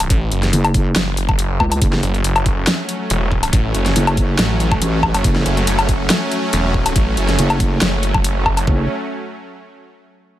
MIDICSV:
0, 0, Header, 1, 5, 480
1, 0, Start_track
1, 0, Key_signature, 3, "minor"
1, 0, Tempo, 428571
1, 114, Time_signature, 4, 2, 24, 8
1, 11641, End_track
2, 0, Start_track
2, 0, Title_t, "Supersaw synth"
2, 0, Program_c, 0, 81
2, 2034, Note_on_c, 0, 54, 86
2, 2034, Note_on_c, 0, 57, 77
2, 2034, Note_on_c, 0, 61, 93
2, 9669, Note_off_c, 0, 54, 0
2, 9669, Note_off_c, 0, 57, 0
2, 9669, Note_off_c, 0, 61, 0
2, 11641, End_track
3, 0, Start_track
3, 0, Title_t, "Detuned saw bass"
3, 0, Program_c, 1, 39
3, 114, Note_on_c, 1, 33, 100
3, 336, Note_off_c, 1, 33, 0
3, 354, Note_on_c, 1, 30, 99
3, 576, Note_off_c, 1, 30, 0
3, 1074, Note_on_c, 1, 30, 96
3, 1776, Note_off_c, 1, 30, 0
3, 2274, Note_on_c, 1, 30, 105
3, 2496, Note_off_c, 1, 30, 0
3, 2514, Note_on_c, 1, 30, 102
3, 2976, Note_off_c, 1, 30, 0
3, 3474, Note_on_c, 1, 28, 104
3, 3936, Note_off_c, 1, 28, 0
3, 3953, Note_on_c, 1, 33, 91
3, 4176, Note_off_c, 1, 33, 0
3, 4194, Note_on_c, 1, 30, 102
3, 4416, Note_off_c, 1, 30, 0
3, 4914, Note_on_c, 1, 33, 95
3, 5376, Note_off_c, 1, 33, 0
3, 5762, Note_on_c, 1, 30, 103
3, 5856, Note_off_c, 1, 30, 0
3, 6114, Note_on_c, 1, 30, 103
3, 6336, Note_off_c, 1, 30, 0
3, 6354, Note_on_c, 1, 30, 95
3, 6816, Note_off_c, 1, 30, 0
3, 7314, Note_on_c, 1, 28, 101
3, 7776, Note_off_c, 1, 28, 0
3, 7794, Note_on_c, 1, 33, 97
3, 8016, Note_off_c, 1, 33, 0
3, 8033, Note_on_c, 1, 30, 102
3, 8256, Note_off_c, 1, 30, 0
3, 8754, Note_on_c, 1, 30, 96
3, 9696, Note_off_c, 1, 30, 0
3, 11641, End_track
4, 0, Start_track
4, 0, Title_t, "Wobble bass"
4, 0, Program_c, 2, 39
4, 593, Note_on_c, 2, 30, 100
4, 1056, Note_off_c, 2, 30, 0
4, 1794, Note_on_c, 2, 37, 102
4, 2016, Note_off_c, 2, 37, 0
4, 2033, Note_on_c, 2, 30, 99
4, 2256, Note_off_c, 2, 30, 0
4, 4433, Note_on_c, 2, 30, 100
4, 4896, Note_off_c, 2, 30, 0
4, 5394, Note_on_c, 2, 33, 100
4, 5741, Note_off_c, 2, 33, 0
4, 5873, Note_on_c, 2, 30, 101
4, 6096, Note_off_c, 2, 30, 0
4, 8274, Note_on_c, 2, 30, 100
4, 8736, Note_off_c, 2, 30, 0
4, 9714, Note_on_c, 2, 30, 100
4, 9937, Note_off_c, 2, 30, 0
4, 11641, End_track
5, 0, Start_track
5, 0, Title_t, "Drums"
5, 2, Note_on_c, 9, 42, 63
5, 2, Note_on_c, 9, 77, 50
5, 114, Note_off_c, 9, 42, 0
5, 114, Note_off_c, 9, 77, 0
5, 114, Note_on_c, 9, 36, 127
5, 114, Note_on_c, 9, 42, 78
5, 226, Note_off_c, 9, 36, 0
5, 226, Note_off_c, 9, 42, 0
5, 354, Note_on_c, 9, 42, 52
5, 466, Note_off_c, 9, 42, 0
5, 483, Note_on_c, 9, 38, 40
5, 483, Note_on_c, 9, 42, 36
5, 594, Note_off_c, 9, 42, 0
5, 594, Note_on_c, 9, 42, 79
5, 595, Note_off_c, 9, 38, 0
5, 706, Note_off_c, 9, 42, 0
5, 722, Note_on_c, 9, 42, 40
5, 722, Note_on_c, 9, 77, 79
5, 834, Note_off_c, 9, 42, 0
5, 834, Note_off_c, 9, 77, 0
5, 834, Note_on_c, 9, 36, 109
5, 834, Note_on_c, 9, 42, 52
5, 946, Note_off_c, 9, 36, 0
5, 946, Note_off_c, 9, 42, 0
5, 1074, Note_on_c, 9, 38, 125
5, 1074, Note_on_c, 9, 42, 78
5, 1186, Note_off_c, 9, 38, 0
5, 1186, Note_off_c, 9, 42, 0
5, 1313, Note_on_c, 9, 42, 55
5, 1425, Note_off_c, 9, 42, 0
5, 1441, Note_on_c, 9, 36, 108
5, 1441, Note_on_c, 9, 77, 60
5, 1553, Note_off_c, 9, 36, 0
5, 1553, Note_off_c, 9, 77, 0
5, 1553, Note_on_c, 9, 42, 79
5, 1665, Note_off_c, 9, 42, 0
5, 1793, Note_on_c, 9, 36, 62
5, 1794, Note_on_c, 9, 77, 76
5, 1905, Note_off_c, 9, 36, 0
5, 1906, Note_off_c, 9, 77, 0
5, 1922, Note_on_c, 9, 42, 61
5, 1922, Note_on_c, 9, 77, 50
5, 2033, Note_off_c, 9, 42, 0
5, 2033, Note_on_c, 9, 36, 127
5, 2033, Note_on_c, 9, 42, 79
5, 2034, Note_off_c, 9, 77, 0
5, 2145, Note_off_c, 9, 36, 0
5, 2145, Note_off_c, 9, 42, 0
5, 2162, Note_on_c, 9, 38, 39
5, 2274, Note_off_c, 9, 38, 0
5, 2274, Note_on_c, 9, 42, 48
5, 2386, Note_off_c, 9, 42, 0
5, 2402, Note_on_c, 9, 42, 34
5, 2513, Note_off_c, 9, 42, 0
5, 2513, Note_on_c, 9, 42, 84
5, 2625, Note_off_c, 9, 42, 0
5, 2641, Note_on_c, 9, 42, 39
5, 2641, Note_on_c, 9, 77, 89
5, 2753, Note_off_c, 9, 42, 0
5, 2753, Note_off_c, 9, 77, 0
5, 2753, Note_on_c, 9, 36, 109
5, 2753, Note_on_c, 9, 42, 50
5, 2865, Note_off_c, 9, 36, 0
5, 2865, Note_off_c, 9, 42, 0
5, 2993, Note_on_c, 9, 38, 123
5, 2993, Note_on_c, 9, 42, 77
5, 3105, Note_off_c, 9, 38, 0
5, 3105, Note_off_c, 9, 42, 0
5, 3234, Note_on_c, 9, 42, 53
5, 3346, Note_off_c, 9, 42, 0
5, 3474, Note_on_c, 9, 42, 78
5, 3586, Note_off_c, 9, 42, 0
5, 3713, Note_on_c, 9, 36, 61
5, 3825, Note_off_c, 9, 36, 0
5, 3841, Note_on_c, 9, 42, 60
5, 3841, Note_on_c, 9, 77, 54
5, 3953, Note_off_c, 9, 42, 0
5, 3953, Note_off_c, 9, 77, 0
5, 3953, Note_on_c, 9, 36, 127
5, 3953, Note_on_c, 9, 42, 74
5, 4065, Note_off_c, 9, 36, 0
5, 4065, Note_off_c, 9, 42, 0
5, 4194, Note_on_c, 9, 42, 49
5, 4306, Note_off_c, 9, 42, 0
5, 4322, Note_on_c, 9, 38, 36
5, 4322, Note_on_c, 9, 42, 35
5, 4434, Note_off_c, 9, 38, 0
5, 4434, Note_off_c, 9, 42, 0
5, 4434, Note_on_c, 9, 42, 78
5, 4546, Note_off_c, 9, 42, 0
5, 4562, Note_on_c, 9, 42, 38
5, 4562, Note_on_c, 9, 77, 89
5, 4674, Note_off_c, 9, 42, 0
5, 4674, Note_off_c, 9, 77, 0
5, 4674, Note_on_c, 9, 36, 106
5, 4674, Note_on_c, 9, 42, 51
5, 4786, Note_off_c, 9, 36, 0
5, 4786, Note_off_c, 9, 42, 0
5, 4914, Note_on_c, 9, 38, 120
5, 4914, Note_on_c, 9, 42, 73
5, 5026, Note_off_c, 9, 38, 0
5, 5026, Note_off_c, 9, 42, 0
5, 5154, Note_on_c, 9, 42, 51
5, 5266, Note_off_c, 9, 42, 0
5, 5281, Note_on_c, 9, 36, 102
5, 5282, Note_on_c, 9, 77, 61
5, 5393, Note_off_c, 9, 36, 0
5, 5394, Note_off_c, 9, 77, 0
5, 5394, Note_on_c, 9, 42, 80
5, 5506, Note_off_c, 9, 42, 0
5, 5634, Note_on_c, 9, 36, 58
5, 5634, Note_on_c, 9, 77, 84
5, 5746, Note_off_c, 9, 36, 0
5, 5746, Note_off_c, 9, 77, 0
5, 5761, Note_on_c, 9, 42, 61
5, 5761, Note_on_c, 9, 77, 56
5, 5873, Note_off_c, 9, 42, 0
5, 5873, Note_off_c, 9, 77, 0
5, 5873, Note_on_c, 9, 42, 78
5, 5874, Note_on_c, 9, 36, 126
5, 5985, Note_off_c, 9, 42, 0
5, 5986, Note_off_c, 9, 36, 0
5, 6001, Note_on_c, 9, 38, 35
5, 6113, Note_off_c, 9, 38, 0
5, 6113, Note_on_c, 9, 42, 51
5, 6225, Note_off_c, 9, 42, 0
5, 6241, Note_on_c, 9, 42, 37
5, 6353, Note_off_c, 9, 42, 0
5, 6353, Note_on_c, 9, 42, 81
5, 6465, Note_off_c, 9, 42, 0
5, 6480, Note_on_c, 9, 42, 38
5, 6480, Note_on_c, 9, 77, 88
5, 6592, Note_off_c, 9, 42, 0
5, 6592, Note_off_c, 9, 77, 0
5, 6593, Note_on_c, 9, 42, 49
5, 6594, Note_on_c, 9, 36, 100
5, 6705, Note_off_c, 9, 42, 0
5, 6706, Note_off_c, 9, 36, 0
5, 6833, Note_on_c, 9, 38, 117
5, 6833, Note_on_c, 9, 42, 80
5, 6945, Note_off_c, 9, 38, 0
5, 6945, Note_off_c, 9, 42, 0
5, 7073, Note_on_c, 9, 42, 52
5, 7185, Note_off_c, 9, 42, 0
5, 7313, Note_on_c, 9, 42, 79
5, 7425, Note_off_c, 9, 42, 0
5, 7554, Note_on_c, 9, 36, 58
5, 7666, Note_off_c, 9, 36, 0
5, 7681, Note_on_c, 9, 42, 65
5, 7681, Note_on_c, 9, 77, 57
5, 7792, Note_off_c, 9, 42, 0
5, 7792, Note_on_c, 9, 42, 78
5, 7793, Note_off_c, 9, 77, 0
5, 7794, Note_on_c, 9, 36, 119
5, 7904, Note_off_c, 9, 42, 0
5, 7906, Note_off_c, 9, 36, 0
5, 8033, Note_on_c, 9, 42, 52
5, 8145, Note_off_c, 9, 42, 0
5, 8160, Note_on_c, 9, 38, 36
5, 8160, Note_on_c, 9, 42, 40
5, 8272, Note_off_c, 9, 38, 0
5, 8272, Note_off_c, 9, 42, 0
5, 8272, Note_on_c, 9, 42, 80
5, 8384, Note_off_c, 9, 42, 0
5, 8401, Note_on_c, 9, 42, 40
5, 8401, Note_on_c, 9, 77, 89
5, 8513, Note_off_c, 9, 42, 0
5, 8513, Note_off_c, 9, 77, 0
5, 8513, Note_on_c, 9, 42, 55
5, 8514, Note_on_c, 9, 36, 105
5, 8625, Note_off_c, 9, 42, 0
5, 8626, Note_off_c, 9, 36, 0
5, 8753, Note_on_c, 9, 38, 120
5, 8753, Note_on_c, 9, 42, 83
5, 8865, Note_off_c, 9, 38, 0
5, 8865, Note_off_c, 9, 42, 0
5, 8993, Note_on_c, 9, 42, 56
5, 9105, Note_off_c, 9, 42, 0
5, 9122, Note_on_c, 9, 36, 99
5, 9122, Note_on_c, 9, 77, 64
5, 9234, Note_off_c, 9, 36, 0
5, 9234, Note_off_c, 9, 77, 0
5, 9234, Note_on_c, 9, 42, 83
5, 9346, Note_off_c, 9, 42, 0
5, 9473, Note_on_c, 9, 77, 89
5, 9474, Note_on_c, 9, 36, 57
5, 9585, Note_off_c, 9, 77, 0
5, 9586, Note_off_c, 9, 36, 0
5, 9601, Note_on_c, 9, 42, 62
5, 9601, Note_on_c, 9, 77, 57
5, 9713, Note_off_c, 9, 42, 0
5, 9713, Note_off_c, 9, 77, 0
5, 9714, Note_on_c, 9, 36, 113
5, 9826, Note_off_c, 9, 36, 0
5, 11641, End_track
0, 0, End_of_file